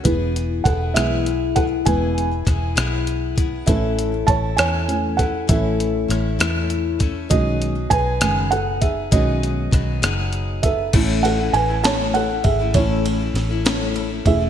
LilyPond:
<<
  \new Staff \with { instrumentName = "Felt piano" } { \time 6/8 \key a \lydian \tempo 4. = 66 <e' b'>4 <a' fis''>8 <gis' e''>4 <a' fis''>8 | <b' gis''>4. r4. | <a' e''>4 <cis'' a''>8 <cis'' gis''>4 <a' fis''>8 | <a' e''>2~ <a' e''>8 r8 |
<fis' dis''>4 <b' gis''>4 <a' fis''>8 <gis' e''>8 | <fis' dis''>2~ <fis' dis''>8 <a' e''>8~ | <a' e''>8 <a' fis''>8 <b' gis''>8 <cis'' a''>8 <a' fis''>8 <gis' e''>8 | cis''2 r8 <gis' e''>8 | }
  \new Staff \with { instrumentName = "Felt piano" } { \time 6/8 \key a \lydian <e b gis'>4. <e gis b>8 r4 | <e gis b>8 r2 r8 | <e a cis'>8 r4. <e a cis'>8 r8 | <e a cis'>4. r4. |
<dis gis cis'>8 r4 <dis gis cis'>8 r4 | <dis gis cis'>4. r4. | <a cis' e'>2. | <a cis' e'>2~ <a cis' e'>8 <a cis' e'>8 | }
  \new Staff \with { instrumentName = "Steel-string acoustic guitar" } { \time 6/8 \key a \lydian <e b e' gis'>4 <e b e' gis'>8 <e b e' gis'>4 <b e' gis'>8 | <e b e' gis'>4 <e b e' gis'>8 <e b e' gis'>4 <b e' gis'>8 | <a, e a cis' e' a'>4 <a cis' e' a'>8 <a, e a cis' e' a'>4 <a cis' e' a'>8 | <a, e a cis' e' a'>4 <a cis' e' a'>8 <a, e a cis' e' a'>4 <a cis' e' a'>8 |
<b, fis b dis' gis'>4 <fis b dis' gis'>8 <b, fis b dis' gis'>4 <b dis' gis'>8 | <b, fis b dis' gis'>4 <fis b dis' gis'>8 <b, fis b dis' gis'>4 <b dis' gis'>8 | <a, e a cis' e' a'>8 <a cis' e' a'>16 <a cis' e' a'>8 <a cis' e' a'>16 <a, e a cis' e' a'>8 <a cis' e' a'>16 <a cis' e' a'>8 <a cis' e' a'>16 | <a, e a cis' e' a'>8 <a cis' e' a'>16 <a cis' e' a'>8 <a cis' e' a'>16 <a, e a cis' e' a'>8 <a cis' e' a'>16 <a cis' e' a'>8 <a cis' e' a'>16 | }
  \new Staff \with { instrumentName = "Fingered electric bass" } { \clef bass \time 6/8 \key a \lydian e,,4 e,,8 b,,4. | e,,4 e,,8 b,,4. | a,,4 a,,8 e,4. | a,,4 a,,8 e,4. |
b,,4 b,,8 fis,,4. | b,,4 b,,8 fis,,4. | a,,4 a,,4. gis,,8 | a,,4 a,,4. e,,8 | }
  \new DrumStaff \with { instrumentName = "Drums" } \drummode { \time 6/8 <hh bd>8 hh8 <hh bd>8 <hh ss>8 hh8 <hh bd>8 | <hh bd>8 hh8 <hh bd ss>8 <hh ss>8 hh8 <hh bd>8 | <hh bd>8 hh8 <hh bd>8 <hh ss>8 hh8 <hh bd>8 | <hh bd>8 hh8 <hh ss>8 <hh ss>8 hh8 <hh bd>8 |
<hh bd>8 hh8 <hh bd>8 <hh ss>8 hh8 <hh bd>8 | <hh bd>8 hh8 <hh bd ss>8 <hh ss>8 hh8 <hh bd>8 | <cymc bd cymr>8 cymr8 cymr8 <cymr sn>8 cymr8 <bd cymr>8 | <bd cymr>8 cymr8 <cymr sn>8 <cymr sn>8 cymr8 <bd cymr>8 | }
>>